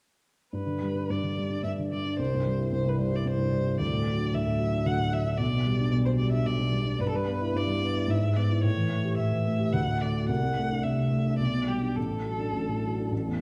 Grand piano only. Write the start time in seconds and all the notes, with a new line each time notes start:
0.53 G2
0.66 D3
0.82 G3
0.95 D4
1.10 G2
1.23 D3
1.38 G3
1.50 D4
1.63 G2
1.79 D3
1.92 G3
2.06 D4
2.19 C2
2.34 G2
2.46 G3
2.59 E4
2.72 C2
2.86 G2
2.98 G3
3.12 E4
3.25 C2
3.38 G2
3.53 G3
3.67 E4
3.79 D2
3.93 A2
4.07 F#3
4.19 D4
4.34 D2
4.47 A2
4.60 F#3
4.73 D4
4.86 D2
4.99 A2
5.12 F#3
5.25 D4
5.39 B1
5.53 B2
5.66 G3
5.80 D4
5.93 B1
6.06 B2
6.20 G3
6.33 D4
6.46 B1
6.60 B2
6.72 G3
6.85 D4
6.99 G2
7.14 G3
7.28 B3
7.41 E4
7.54 G2
7.67 G3
7.81 B3
7.93 E4
8.07 G#2
8.22 G#3
8.36 B3
8.50 E4
8.63 A2
8.77 E3
8.90 A3
9.04 G4
9.19 A2
9.32 E3
9.46 A3
9.59 G4
9.73 D2
9.87 A2
10.02 A3
10.16 F#4
10.29 C2
10.43 C3
10.58 A3
10.70 D4
10.85 C2
10.99 C3
11.11 A3
11.25 D4
11.39 B1
11.54 B2
11.68 G3
11.82 D4
11.97 A1
12.10 A2
12.26 F#3
12.39 D4
12.53 A1
12.68 A2
12.83 F#3
12.98 D4
13.12 A1
13.27 E2